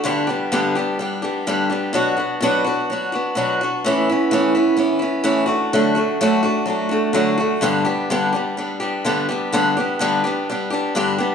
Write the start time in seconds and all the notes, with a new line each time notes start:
0.04 G2 D3 G3 B3 D4 G4
0.27 G3 B3 D4 G4
0.52 G2 D3 G3 B3 D4 G4
0.75 G3 B3 D4 G4
0.99 G3 B3 D4 G4
1.22 G3 B3 D4 G4
1.47 G2 D3 G3 B3 D4 G4
1.70 G3 B3 D4 G4
1.93 B2 F#3 B3 D4 F#4
2.17 B3 D4 F#4
2.41 B2 F#3 B3 D4 F#4
2.64 B3 D4 F#4
2.90 F#3 B3 D4 F#4
3.12 B3 D4 F#4
3.35 B2 F#3 B3 D4 F#4
3.61 B3 D4 F#4
3.85 A2 E3 B3 C#4 E4
4.09 B3 C#4 E4
4.31 A2 E3 B3 C#4 E4
4.55 B3 C#4 E4
4.77 E3 B3 C#4 E4
4.99 B3 C#4 E4
5.24 A2 E3 B3 C#4 E4
5.46 A3 D4 F#4
5.73 D3 F#3 A3 D4 F#4
5.95 A3 D4 F#4
6.21 D3 F#3 A3 D4 F#4
6.43 A3 D4 F#4
6.66 F#3 A3 D4
6.70 F#4
6.89 A3 D4 F#4
7.13 D3 F#3 A3 D4 F#4
7.38 A3 D4 F#4
7.61 G2 D3 G3 B3 D4 G4
7.85 G3 B3 D4 G4
8.10 G2 D3 G3 B3 D4 G4
8.33 G3 B3 D4 G4
8.57 G3 B3 D4 G4
8.80 G3 B3 D4 G4
9.05 G2 D3 G3 B3 D4 G4
9.29 G3 B3 D4 G4
9.52 G2 D3 G3 B3 D4 G4
9.77 G3 B3 D4 G4
9.99 G2 D3 G3 B3 D4 G4
10.24 G3 B3 D4 G4
10.50 G3 B3 D4 G4
10.70 G3 B3 D4 G4
10.95 G2 D3 G3 B3 D4 G4
11.18 G3 B3 D4 G4